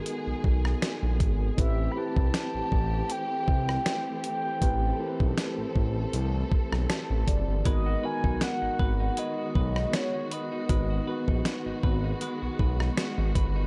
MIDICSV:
0, 0, Header, 1, 7, 480
1, 0, Start_track
1, 0, Tempo, 759494
1, 999, Time_signature, 4, 2, 24, 8
1, 8638, End_track
2, 0, Start_track
2, 0, Title_t, "Soft synth lead"
2, 0, Program_c, 0, 80
2, 968, Note_on_c, 0, 75, 76
2, 1010, Note_on_c, 0, 76, 105
2, 1020, Note_off_c, 0, 75, 0
2, 1210, Note_on_c, 0, 83, 84
2, 1220, Note_off_c, 0, 76, 0
2, 1252, Note_on_c, 0, 81, 127
2, 1261, Note_off_c, 0, 83, 0
2, 1970, Note_on_c, 0, 79, 114
2, 1979, Note_off_c, 0, 81, 0
2, 2684, Note_off_c, 0, 79, 0
2, 2689, Note_on_c, 0, 79, 108
2, 3619, Note_off_c, 0, 79, 0
2, 4848, Note_on_c, 0, 75, 109
2, 5088, Note_on_c, 0, 80, 121
2, 5098, Note_off_c, 0, 75, 0
2, 5330, Note_on_c, 0, 78, 108
2, 5339, Note_off_c, 0, 80, 0
2, 5808, Note_on_c, 0, 75, 96
2, 5817, Note_off_c, 0, 78, 0
2, 6289, Note_on_c, 0, 73, 102
2, 6298, Note_off_c, 0, 75, 0
2, 6530, Note_on_c, 0, 75, 102
2, 6539, Note_off_c, 0, 73, 0
2, 7485, Note_off_c, 0, 75, 0
2, 8638, End_track
3, 0, Start_track
3, 0, Title_t, "Clean electric guitar"
3, 0, Program_c, 1, 27
3, 4838, Note_on_c, 1, 56, 85
3, 4842, Note_on_c, 1, 71, 73
3, 4968, Note_on_c, 1, 66, 64
3, 5075, Note_off_c, 1, 71, 0
3, 5078, Note_on_c, 1, 71, 74
3, 5207, Note_on_c, 1, 63, 64
3, 5315, Note_off_c, 1, 66, 0
3, 5317, Note_on_c, 1, 66, 63
3, 5445, Note_off_c, 1, 63, 0
3, 5447, Note_on_c, 1, 63, 67
3, 5555, Note_off_c, 1, 71, 0
3, 5558, Note_on_c, 1, 71, 70
3, 5686, Note_off_c, 1, 63, 0
3, 5688, Note_on_c, 1, 63, 62
3, 5796, Note_off_c, 1, 56, 0
3, 5799, Note_on_c, 1, 56, 83
3, 5800, Note_off_c, 1, 71, 0
3, 5803, Note_on_c, 1, 71, 73
3, 5926, Note_off_c, 1, 66, 0
3, 5928, Note_on_c, 1, 66, 65
3, 6036, Note_off_c, 1, 71, 0
3, 6039, Note_on_c, 1, 71, 71
3, 6166, Note_off_c, 1, 63, 0
3, 6168, Note_on_c, 1, 63, 60
3, 6276, Note_off_c, 1, 66, 0
3, 6278, Note_on_c, 1, 66, 65
3, 6406, Note_off_c, 1, 63, 0
3, 6408, Note_on_c, 1, 63, 65
3, 6517, Note_off_c, 1, 71, 0
3, 6520, Note_on_c, 1, 71, 71
3, 6646, Note_off_c, 1, 63, 0
3, 6649, Note_on_c, 1, 63, 62
3, 6758, Note_off_c, 1, 56, 0
3, 6760, Note_on_c, 1, 56, 88
3, 6761, Note_off_c, 1, 71, 0
3, 6764, Note_on_c, 1, 71, 72
3, 6888, Note_off_c, 1, 66, 0
3, 6890, Note_on_c, 1, 66, 65
3, 6996, Note_off_c, 1, 71, 0
3, 6999, Note_on_c, 1, 71, 70
3, 7126, Note_off_c, 1, 63, 0
3, 7129, Note_on_c, 1, 63, 64
3, 7237, Note_off_c, 1, 66, 0
3, 7239, Note_on_c, 1, 66, 63
3, 7366, Note_off_c, 1, 63, 0
3, 7369, Note_on_c, 1, 63, 67
3, 7477, Note_off_c, 1, 71, 0
3, 7480, Note_on_c, 1, 71, 71
3, 7606, Note_off_c, 1, 63, 0
3, 7609, Note_on_c, 1, 63, 61
3, 7717, Note_off_c, 1, 56, 0
3, 7720, Note_on_c, 1, 56, 87
3, 7721, Note_off_c, 1, 71, 0
3, 7724, Note_on_c, 1, 71, 72
3, 7847, Note_off_c, 1, 66, 0
3, 7849, Note_on_c, 1, 66, 65
3, 7957, Note_off_c, 1, 71, 0
3, 7959, Note_on_c, 1, 71, 71
3, 8086, Note_off_c, 1, 63, 0
3, 8089, Note_on_c, 1, 63, 61
3, 8196, Note_off_c, 1, 66, 0
3, 8199, Note_on_c, 1, 66, 65
3, 8327, Note_off_c, 1, 63, 0
3, 8329, Note_on_c, 1, 63, 63
3, 8437, Note_off_c, 1, 71, 0
3, 8440, Note_on_c, 1, 71, 73
3, 8567, Note_off_c, 1, 63, 0
3, 8569, Note_on_c, 1, 63, 67
3, 8638, Note_off_c, 1, 56, 0
3, 8638, Note_off_c, 1, 63, 0
3, 8638, Note_off_c, 1, 66, 0
3, 8638, Note_off_c, 1, 71, 0
3, 8638, End_track
4, 0, Start_track
4, 0, Title_t, "Tine electric piano"
4, 0, Program_c, 2, 4
4, 0, Control_c, 2, 64, 127
4, 0, Note_on_c, 2, 59, 76
4, 0, Note_on_c, 2, 63, 67
4, 0, Note_on_c, 2, 66, 72
4, 0, Note_on_c, 2, 69, 69
4, 0, Note_on_c, 2, 70, 86
4, 82, Note_off_c, 2, 59, 0
4, 85, Note_off_c, 2, 63, 0
4, 87, Note_off_c, 2, 66, 0
4, 110, Note_off_c, 2, 70, 0
4, 993, Note_on_c, 2, 60, 78
4, 998, Note_on_c, 2, 64, 76
4, 1003, Note_on_c, 2, 67, 69
4, 1007, Control_c, 2, 64, 0
4, 1008, Note_on_c, 2, 71, 88
4, 1012, Note_off_c, 2, 69, 0
4, 1129, Control_c, 2, 64, 127
4, 1190, Note_off_c, 2, 60, 0
4, 1193, Note_off_c, 2, 64, 0
4, 1195, Note_off_c, 2, 67, 0
4, 1198, Note_off_c, 2, 71, 0
4, 1233, Note_on_c, 2, 60, 73
4, 1238, Note_on_c, 2, 64, 74
4, 1243, Note_on_c, 2, 67, 66
4, 1249, Note_on_c, 2, 71, 90
4, 2001, Note_off_c, 2, 60, 0
4, 2003, Note_off_c, 2, 64, 0
4, 2006, Note_off_c, 2, 67, 0
4, 2009, Note_off_c, 2, 71, 0
4, 2912, Note_on_c, 2, 60, 80
4, 2918, Note_on_c, 2, 64, 70
4, 2923, Note_on_c, 2, 67, 72
4, 2927, Note_on_c, 2, 71, 88
4, 3110, Note_off_c, 2, 60, 0
4, 3113, Note_off_c, 2, 64, 0
4, 3115, Note_off_c, 2, 67, 0
4, 3118, Note_off_c, 2, 71, 0
4, 3153, Note_on_c, 2, 60, 79
4, 3158, Note_on_c, 2, 64, 69
4, 3164, Note_on_c, 2, 67, 72
4, 3169, Note_on_c, 2, 70, 66
4, 3208, Note_off_c, 2, 70, 0
4, 3209, Note_on_c, 2, 71, 81
4, 3921, Note_off_c, 2, 60, 0
4, 3923, Note_off_c, 2, 64, 0
4, 3926, Note_off_c, 2, 67, 0
4, 3949, Note_off_c, 2, 71, 0
4, 4361, Note_on_c, 2, 81, 76
4, 4584, Note_off_c, 2, 81, 0
4, 4601, Note_on_c, 2, 74, 69
4, 4824, Note_off_c, 2, 74, 0
4, 4834, Note_on_c, 2, 59, 80
4, 4840, Note_on_c, 2, 63, 71
4, 4844, Note_on_c, 2, 66, 71
4, 4846, Control_c, 2, 64, 0
4, 4849, Note_on_c, 2, 70, 84
4, 4939, Control_c, 2, 64, 127
4, 5031, Note_off_c, 2, 59, 0
4, 5034, Note_off_c, 2, 63, 0
4, 5036, Note_off_c, 2, 66, 0
4, 5038, Note_off_c, 2, 70, 0
4, 5072, Note_on_c, 2, 59, 73
4, 5077, Note_on_c, 2, 63, 70
4, 5083, Note_on_c, 2, 66, 65
4, 5088, Note_on_c, 2, 70, 81
4, 5840, Note_off_c, 2, 59, 0
4, 5843, Note_off_c, 2, 63, 0
4, 5846, Note_off_c, 2, 66, 0
4, 5849, Note_off_c, 2, 70, 0
4, 6753, Note_on_c, 2, 59, 80
4, 6758, Note_on_c, 2, 63, 71
4, 6763, Note_on_c, 2, 66, 73
4, 6768, Note_on_c, 2, 71, 82
4, 6951, Note_off_c, 2, 59, 0
4, 6953, Note_off_c, 2, 63, 0
4, 6955, Note_off_c, 2, 66, 0
4, 6958, Note_off_c, 2, 71, 0
4, 6994, Note_on_c, 2, 59, 78
4, 7000, Note_on_c, 2, 63, 69
4, 7004, Note_on_c, 2, 66, 70
4, 7010, Note_on_c, 2, 71, 89
4, 7761, Note_off_c, 2, 59, 0
4, 7764, Note_off_c, 2, 63, 0
4, 7766, Note_off_c, 2, 66, 0
4, 7769, Note_off_c, 2, 71, 0
4, 8638, End_track
5, 0, Start_track
5, 0, Title_t, "String section"
5, 0, Program_c, 3, 48
5, 0, Note_on_c, 3, 51, 83
5, 0, Note_on_c, 3, 56, 78
5, 0, Note_on_c, 3, 59, 75
5, 0, Note_on_c, 3, 68, 92
5, 973, Note_off_c, 3, 51, 0
5, 973, Note_off_c, 3, 59, 0
5, 974, Note_off_c, 3, 56, 0
5, 979, Note_off_c, 3, 68, 0
5, 996, Note_on_c, 3, 52, 79
5, 997, Note_on_c, 3, 57, 74
5, 997, Note_on_c, 3, 60, 78
5, 997, Note_on_c, 3, 67, 93
5, 2899, Note_off_c, 3, 67, 0
5, 2919, Note_on_c, 3, 69, 88
5, 4813, Note_off_c, 3, 52, 0
5, 4813, Note_off_c, 3, 57, 0
5, 4813, Note_off_c, 3, 60, 0
5, 4820, Note_off_c, 3, 69, 0
5, 4837, Note_on_c, 3, 56, 74
5, 4838, Note_on_c, 3, 51, 84
5, 4839, Note_on_c, 3, 59, 72
5, 4839, Note_on_c, 3, 66, 91
5, 8638, Note_off_c, 3, 51, 0
5, 8638, Note_off_c, 3, 56, 0
5, 8638, Note_off_c, 3, 59, 0
5, 8638, Note_off_c, 3, 66, 0
5, 8638, End_track
6, 0, Start_track
6, 0, Title_t, "Analog synth bass"
6, 0, Program_c, 4, 38
6, 170, Note_on_c, 4, 35, 51
6, 214, Note_off_c, 4, 35, 0
6, 279, Note_on_c, 4, 35, 85
6, 469, Note_off_c, 4, 35, 0
6, 649, Note_on_c, 4, 34, 87
6, 759, Note_on_c, 4, 32, 91
6, 769, Note_off_c, 4, 34, 0
6, 949, Note_off_c, 4, 32, 0
6, 999, Note_on_c, 4, 33, 104
6, 1189, Note_off_c, 4, 33, 0
6, 1368, Note_on_c, 4, 36, 90
6, 1456, Note_off_c, 4, 36, 0
6, 1608, Note_on_c, 4, 33, 53
6, 1652, Note_off_c, 4, 33, 0
6, 1718, Note_on_c, 4, 33, 90
6, 1909, Note_off_c, 4, 33, 0
6, 2198, Note_on_c, 4, 36, 97
6, 2389, Note_off_c, 4, 36, 0
6, 2918, Note_on_c, 4, 33, 114
6, 3109, Note_off_c, 4, 33, 0
6, 3287, Note_on_c, 4, 35, 85
6, 3376, Note_off_c, 4, 35, 0
6, 3527, Note_on_c, 4, 33, 54
6, 3572, Note_off_c, 4, 33, 0
6, 3638, Note_on_c, 4, 33, 98
6, 3829, Note_off_c, 4, 33, 0
6, 3876, Note_on_c, 4, 36, 106
6, 4067, Note_off_c, 4, 36, 0
6, 4118, Note_on_c, 4, 35, 51
6, 4170, Note_off_c, 4, 35, 0
6, 4247, Note_on_c, 4, 35, 94
6, 4335, Note_off_c, 4, 35, 0
6, 4488, Note_on_c, 4, 33, 85
6, 4576, Note_off_c, 4, 33, 0
6, 4598, Note_on_c, 4, 30, 97
6, 4701, Note_off_c, 4, 30, 0
6, 4728, Note_on_c, 4, 31, 85
6, 4816, Note_off_c, 4, 31, 0
6, 4838, Note_on_c, 4, 32, 98
6, 5029, Note_off_c, 4, 32, 0
6, 5208, Note_on_c, 4, 35, 92
6, 5296, Note_off_c, 4, 35, 0
6, 5449, Note_on_c, 4, 32, 53
6, 5493, Note_off_c, 4, 32, 0
6, 5558, Note_on_c, 4, 32, 103
6, 5749, Note_off_c, 4, 32, 0
6, 6038, Note_on_c, 4, 35, 90
6, 6229, Note_off_c, 4, 35, 0
6, 6759, Note_on_c, 4, 32, 104
6, 6949, Note_off_c, 4, 32, 0
6, 7128, Note_on_c, 4, 34, 91
6, 7216, Note_off_c, 4, 34, 0
6, 7369, Note_on_c, 4, 32, 51
6, 7414, Note_off_c, 4, 32, 0
6, 7479, Note_on_c, 4, 32, 95
6, 7669, Note_off_c, 4, 32, 0
6, 7850, Note_on_c, 4, 35, 50
6, 7894, Note_off_c, 4, 35, 0
6, 7959, Note_on_c, 4, 35, 92
6, 8149, Note_off_c, 4, 35, 0
6, 8330, Note_on_c, 4, 32, 96
6, 8417, Note_off_c, 4, 32, 0
6, 8440, Note_on_c, 4, 31, 102
6, 8630, Note_off_c, 4, 31, 0
6, 8638, End_track
7, 0, Start_track
7, 0, Title_t, "Drums"
7, 38, Note_on_c, 9, 42, 74
7, 101, Note_off_c, 9, 42, 0
7, 279, Note_on_c, 9, 36, 104
7, 342, Note_off_c, 9, 36, 0
7, 411, Note_on_c, 9, 37, 91
7, 474, Note_off_c, 9, 37, 0
7, 520, Note_on_c, 9, 38, 118
7, 521, Note_on_c, 9, 42, 80
7, 583, Note_off_c, 9, 38, 0
7, 584, Note_off_c, 9, 42, 0
7, 759, Note_on_c, 9, 36, 104
7, 760, Note_on_c, 9, 42, 72
7, 822, Note_off_c, 9, 36, 0
7, 823, Note_off_c, 9, 42, 0
7, 999, Note_on_c, 9, 36, 115
7, 1000, Note_on_c, 9, 42, 84
7, 1062, Note_off_c, 9, 36, 0
7, 1063, Note_off_c, 9, 42, 0
7, 1368, Note_on_c, 9, 36, 96
7, 1431, Note_off_c, 9, 36, 0
7, 1479, Note_on_c, 9, 38, 112
7, 1482, Note_on_c, 9, 42, 75
7, 1542, Note_off_c, 9, 38, 0
7, 1545, Note_off_c, 9, 42, 0
7, 1718, Note_on_c, 9, 36, 92
7, 1782, Note_off_c, 9, 36, 0
7, 1957, Note_on_c, 9, 42, 80
7, 2020, Note_off_c, 9, 42, 0
7, 2198, Note_on_c, 9, 36, 100
7, 2262, Note_off_c, 9, 36, 0
7, 2331, Note_on_c, 9, 37, 98
7, 2394, Note_off_c, 9, 37, 0
7, 2439, Note_on_c, 9, 38, 120
7, 2440, Note_on_c, 9, 42, 79
7, 2502, Note_off_c, 9, 38, 0
7, 2503, Note_off_c, 9, 42, 0
7, 2678, Note_on_c, 9, 42, 69
7, 2742, Note_off_c, 9, 42, 0
7, 2918, Note_on_c, 9, 36, 120
7, 2918, Note_on_c, 9, 42, 81
7, 2981, Note_off_c, 9, 36, 0
7, 2981, Note_off_c, 9, 42, 0
7, 3288, Note_on_c, 9, 36, 93
7, 3351, Note_off_c, 9, 36, 0
7, 3398, Note_on_c, 9, 38, 115
7, 3401, Note_on_c, 9, 42, 76
7, 3461, Note_off_c, 9, 38, 0
7, 3464, Note_off_c, 9, 42, 0
7, 3638, Note_on_c, 9, 36, 91
7, 3701, Note_off_c, 9, 36, 0
7, 3877, Note_on_c, 9, 42, 77
7, 3940, Note_off_c, 9, 42, 0
7, 4118, Note_on_c, 9, 36, 102
7, 4181, Note_off_c, 9, 36, 0
7, 4250, Note_on_c, 9, 37, 96
7, 4313, Note_off_c, 9, 37, 0
7, 4358, Note_on_c, 9, 38, 113
7, 4359, Note_on_c, 9, 42, 79
7, 4422, Note_off_c, 9, 38, 0
7, 4423, Note_off_c, 9, 42, 0
7, 4598, Note_on_c, 9, 36, 97
7, 4598, Note_on_c, 9, 42, 74
7, 4661, Note_off_c, 9, 36, 0
7, 4662, Note_off_c, 9, 42, 0
7, 4837, Note_on_c, 9, 42, 80
7, 4838, Note_on_c, 9, 36, 118
7, 4901, Note_off_c, 9, 36, 0
7, 4901, Note_off_c, 9, 42, 0
7, 5208, Note_on_c, 9, 36, 99
7, 5271, Note_off_c, 9, 36, 0
7, 5316, Note_on_c, 9, 38, 116
7, 5320, Note_on_c, 9, 42, 72
7, 5379, Note_off_c, 9, 38, 0
7, 5383, Note_off_c, 9, 42, 0
7, 5558, Note_on_c, 9, 36, 93
7, 5621, Note_off_c, 9, 36, 0
7, 5796, Note_on_c, 9, 42, 71
7, 5859, Note_off_c, 9, 42, 0
7, 6038, Note_on_c, 9, 36, 104
7, 6101, Note_off_c, 9, 36, 0
7, 6169, Note_on_c, 9, 37, 90
7, 6233, Note_off_c, 9, 37, 0
7, 6278, Note_on_c, 9, 38, 116
7, 6279, Note_on_c, 9, 42, 81
7, 6342, Note_off_c, 9, 38, 0
7, 6343, Note_off_c, 9, 42, 0
7, 6519, Note_on_c, 9, 42, 71
7, 6582, Note_off_c, 9, 42, 0
7, 6758, Note_on_c, 9, 42, 79
7, 6759, Note_on_c, 9, 36, 115
7, 6822, Note_off_c, 9, 36, 0
7, 6822, Note_off_c, 9, 42, 0
7, 7129, Note_on_c, 9, 36, 99
7, 7192, Note_off_c, 9, 36, 0
7, 7237, Note_on_c, 9, 38, 112
7, 7241, Note_on_c, 9, 42, 78
7, 7301, Note_off_c, 9, 38, 0
7, 7304, Note_off_c, 9, 42, 0
7, 7479, Note_on_c, 9, 36, 99
7, 7542, Note_off_c, 9, 36, 0
7, 7717, Note_on_c, 9, 42, 72
7, 7780, Note_off_c, 9, 42, 0
7, 7959, Note_on_c, 9, 36, 103
7, 8022, Note_off_c, 9, 36, 0
7, 8091, Note_on_c, 9, 37, 98
7, 8155, Note_off_c, 9, 37, 0
7, 8200, Note_on_c, 9, 38, 116
7, 8201, Note_on_c, 9, 42, 83
7, 8263, Note_off_c, 9, 38, 0
7, 8264, Note_off_c, 9, 42, 0
7, 8439, Note_on_c, 9, 36, 98
7, 8440, Note_on_c, 9, 42, 71
7, 8503, Note_off_c, 9, 36, 0
7, 8503, Note_off_c, 9, 42, 0
7, 8638, End_track
0, 0, End_of_file